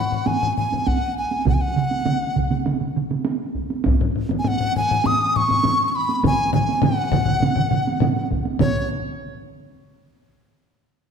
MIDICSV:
0, 0, Header, 1, 3, 480
1, 0, Start_track
1, 0, Tempo, 596421
1, 1186, Time_signature, 4, 2, 24, 8
1, 5021, Tempo, 589971
1, 8983, End_track
2, 0, Start_track
2, 0, Title_t, "Dizi"
2, 0, Program_c, 0, 73
2, 0, Note_on_c, 0, 78, 76
2, 214, Note_on_c, 0, 80, 87
2, 226, Note_off_c, 0, 78, 0
2, 454, Note_off_c, 0, 80, 0
2, 459, Note_on_c, 0, 80, 71
2, 700, Note_on_c, 0, 78, 78
2, 712, Note_off_c, 0, 80, 0
2, 943, Note_off_c, 0, 78, 0
2, 947, Note_on_c, 0, 80, 74
2, 1170, Note_off_c, 0, 80, 0
2, 1196, Note_on_c, 0, 78, 75
2, 1236, Note_on_c, 0, 80, 60
2, 1248, Note_off_c, 0, 78, 0
2, 1295, Note_on_c, 0, 78, 78
2, 1307, Note_off_c, 0, 80, 0
2, 2152, Note_off_c, 0, 78, 0
2, 3531, Note_on_c, 0, 80, 61
2, 3602, Note_on_c, 0, 78, 92
2, 3614, Note_off_c, 0, 80, 0
2, 3834, Note_off_c, 0, 78, 0
2, 3838, Note_on_c, 0, 80, 92
2, 4073, Note_on_c, 0, 87, 93
2, 4085, Note_off_c, 0, 80, 0
2, 4316, Note_on_c, 0, 85, 102
2, 4328, Note_off_c, 0, 87, 0
2, 4732, Note_off_c, 0, 85, 0
2, 4732, Note_on_c, 0, 85, 54
2, 4790, Note_on_c, 0, 83, 87
2, 4802, Note_off_c, 0, 85, 0
2, 5025, Note_off_c, 0, 83, 0
2, 5041, Note_on_c, 0, 80, 98
2, 5256, Note_off_c, 0, 80, 0
2, 5267, Note_on_c, 0, 80, 80
2, 5506, Note_on_c, 0, 78, 91
2, 5518, Note_off_c, 0, 80, 0
2, 6708, Note_off_c, 0, 78, 0
2, 6948, Note_on_c, 0, 73, 82
2, 7171, Note_off_c, 0, 73, 0
2, 8983, End_track
3, 0, Start_track
3, 0, Title_t, "Taiko and cinematic ensemble drums"
3, 99, Note_on_c, 9, 45, 61
3, 179, Note_off_c, 9, 45, 0
3, 209, Note_on_c, 9, 48, 70
3, 218, Note_on_c, 9, 45, 62
3, 289, Note_off_c, 9, 48, 0
3, 299, Note_off_c, 9, 45, 0
3, 345, Note_on_c, 9, 45, 67
3, 426, Note_off_c, 9, 45, 0
3, 464, Note_on_c, 9, 45, 60
3, 544, Note_off_c, 9, 45, 0
3, 582, Note_on_c, 9, 48, 50
3, 592, Note_on_c, 9, 45, 57
3, 663, Note_off_c, 9, 48, 0
3, 673, Note_off_c, 9, 45, 0
3, 697, Note_on_c, 9, 48, 67
3, 705, Note_on_c, 9, 41, 70
3, 778, Note_off_c, 9, 48, 0
3, 785, Note_off_c, 9, 41, 0
3, 1056, Note_on_c, 9, 48, 54
3, 1137, Note_off_c, 9, 48, 0
3, 1170, Note_on_c, 9, 48, 62
3, 1180, Note_on_c, 9, 47, 91
3, 1181, Note_on_c, 9, 41, 96
3, 1251, Note_off_c, 9, 48, 0
3, 1261, Note_off_c, 9, 47, 0
3, 1262, Note_off_c, 9, 41, 0
3, 1418, Note_on_c, 9, 47, 86
3, 1499, Note_off_c, 9, 47, 0
3, 1537, Note_on_c, 9, 48, 58
3, 1618, Note_off_c, 9, 48, 0
3, 1654, Note_on_c, 9, 48, 69
3, 1661, Note_on_c, 9, 47, 90
3, 1734, Note_off_c, 9, 48, 0
3, 1741, Note_off_c, 9, 47, 0
3, 1900, Note_on_c, 9, 47, 71
3, 1903, Note_on_c, 9, 41, 62
3, 1981, Note_off_c, 9, 47, 0
3, 1983, Note_off_c, 9, 41, 0
3, 2019, Note_on_c, 9, 47, 62
3, 2019, Note_on_c, 9, 48, 59
3, 2099, Note_off_c, 9, 48, 0
3, 2100, Note_off_c, 9, 47, 0
3, 2140, Note_on_c, 9, 47, 66
3, 2140, Note_on_c, 9, 48, 72
3, 2220, Note_off_c, 9, 48, 0
3, 2221, Note_off_c, 9, 47, 0
3, 2260, Note_on_c, 9, 47, 62
3, 2341, Note_off_c, 9, 47, 0
3, 2385, Note_on_c, 9, 47, 70
3, 2465, Note_off_c, 9, 47, 0
3, 2502, Note_on_c, 9, 47, 69
3, 2503, Note_on_c, 9, 48, 56
3, 2583, Note_off_c, 9, 47, 0
3, 2583, Note_off_c, 9, 48, 0
3, 2612, Note_on_c, 9, 48, 78
3, 2693, Note_off_c, 9, 48, 0
3, 2861, Note_on_c, 9, 41, 63
3, 2942, Note_off_c, 9, 41, 0
3, 2979, Note_on_c, 9, 48, 55
3, 3060, Note_off_c, 9, 48, 0
3, 3090, Note_on_c, 9, 48, 85
3, 3108, Note_on_c, 9, 45, 61
3, 3111, Note_on_c, 9, 41, 90
3, 3170, Note_off_c, 9, 48, 0
3, 3188, Note_off_c, 9, 45, 0
3, 3192, Note_off_c, 9, 41, 0
3, 3228, Note_on_c, 9, 45, 76
3, 3308, Note_off_c, 9, 45, 0
3, 3346, Note_on_c, 9, 45, 64
3, 3426, Note_off_c, 9, 45, 0
3, 3454, Note_on_c, 9, 48, 67
3, 3468, Note_on_c, 9, 45, 73
3, 3534, Note_off_c, 9, 48, 0
3, 3549, Note_off_c, 9, 45, 0
3, 3577, Note_on_c, 9, 48, 77
3, 3580, Note_on_c, 9, 45, 76
3, 3657, Note_off_c, 9, 48, 0
3, 3660, Note_off_c, 9, 45, 0
3, 3706, Note_on_c, 9, 45, 66
3, 3787, Note_off_c, 9, 45, 0
3, 3834, Note_on_c, 9, 45, 73
3, 3915, Note_off_c, 9, 45, 0
3, 3953, Note_on_c, 9, 45, 76
3, 4033, Note_off_c, 9, 45, 0
3, 4056, Note_on_c, 9, 48, 77
3, 4069, Note_on_c, 9, 45, 88
3, 4136, Note_off_c, 9, 48, 0
3, 4149, Note_off_c, 9, 45, 0
3, 4315, Note_on_c, 9, 45, 74
3, 4395, Note_off_c, 9, 45, 0
3, 4415, Note_on_c, 9, 48, 54
3, 4432, Note_on_c, 9, 45, 67
3, 4495, Note_off_c, 9, 48, 0
3, 4512, Note_off_c, 9, 45, 0
3, 4535, Note_on_c, 9, 48, 81
3, 4547, Note_on_c, 9, 45, 90
3, 4616, Note_off_c, 9, 48, 0
3, 4627, Note_off_c, 9, 45, 0
3, 4901, Note_on_c, 9, 48, 61
3, 4981, Note_off_c, 9, 48, 0
3, 5018, Note_on_c, 9, 41, 101
3, 5018, Note_on_c, 9, 47, 106
3, 5020, Note_on_c, 9, 48, 75
3, 5025, Note_on_c, 9, 45, 96
3, 5099, Note_off_c, 9, 41, 0
3, 5099, Note_off_c, 9, 47, 0
3, 5101, Note_off_c, 9, 48, 0
3, 5107, Note_off_c, 9, 45, 0
3, 5258, Note_on_c, 9, 45, 110
3, 5264, Note_on_c, 9, 47, 104
3, 5339, Note_off_c, 9, 45, 0
3, 5345, Note_off_c, 9, 47, 0
3, 5385, Note_on_c, 9, 48, 62
3, 5467, Note_off_c, 9, 48, 0
3, 5491, Note_on_c, 9, 45, 114
3, 5502, Note_on_c, 9, 48, 86
3, 5506, Note_on_c, 9, 47, 98
3, 5573, Note_off_c, 9, 45, 0
3, 5583, Note_off_c, 9, 48, 0
3, 5588, Note_off_c, 9, 47, 0
3, 5736, Note_on_c, 9, 41, 73
3, 5736, Note_on_c, 9, 45, 112
3, 5746, Note_on_c, 9, 47, 107
3, 5817, Note_off_c, 9, 41, 0
3, 5817, Note_off_c, 9, 45, 0
3, 5827, Note_off_c, 9, 47, 0
3, 5850, Note_on_c, 9, 45, 71
3, 5869, Note_on_c, 9, 47, 78
3, 5931, Note_off_c, 9, 45, 0
3, 5950, Note_off_c, 9, 47, 0
3, 5969, Note_on_c, 9, 45, 71
3, 5981, Note_on_c, 9, 47, 74
3, 5987, Note_on_c, 9, 48, 79
3, 6050, Note_off_c, 9, 45, 0
3, 6062, Note_off_c, 9, 47, 0
3, 6068, Note_off_c, 9, 48, 0
3, 6094, Note_on_c, 9, 45, 73
3, 6106, Note_on_c, 9, 47, 77
3, 6175, Note_off_c, 9, 45, 0
3, 6187, Note_off_c, 9, 47, 0
3, 6217, Note_on_c, 9, 45, 71
3, 6226, Note_on_c, 9, 47, 81
3, 6299, Note_off_c, 9, 45, 0
3, 6307, Note_off_c, 9, 47, 0
3, 6351, Note_on_c, 9, 48, 63
3, 6433, Note_off_c, 9, 48, 0
3, 6457, Note_on_c, 9, 45, 97
3, 6466, Note_on_c, 9, 47, 99
3, 6468, Note_on_c, 9, 48, 84
3, 6539, Note_off_c, 9, 45, 0
3, 6547, Note_off_c, 9, 47, 0
3, 6550, Note_off_c, 9, 48, 0
3, 6587, Note_on_c, 9, 48, 57
3, 6668, Note_off_c, 9, 48, 0
3, 6702, Note_on_c, 9, 41, 82
3, 6784, Note_off_c, 9, 41, 0
3, 6823, Note_on_c, 9, 48, 63
3, 6904, Note_off_c, 9, 48, 0
3, 6937, Note_on_c, 9, 45, 105
3, 6942, Note_on_c, 9, 48, 85
3, 6945, Note_on_c, 9, 41, 86
3, 6948, Note_on_c, 9, 47, 112
3, 7018, Note_off_c, 9, 45, 0
3, 7024, Note_off_c, 9, 48, 0
3, 7026, Note_off_c, 9, 41, 0
3, 7029, Note_off_c, 9, 47, 0
3, 8983, End_track
0, 0, End_of_file